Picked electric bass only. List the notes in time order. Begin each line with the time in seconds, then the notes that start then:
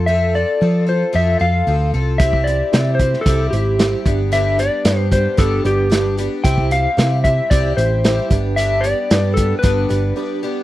Already playing: F2
0.62 F3
1.15 F2
1.41 F2
1.67 D2
1.94 C2
2.20 C2
2.73 C3
3.26 C2
3.53 G#1
4.06 G1
4.85 G2
5.38 G1
5.65 G1
6.45 C2
6.98 C3
7.51 C2
7.77 A1
8.31 G1
9.11 G2
9.64 G1
9.91 G1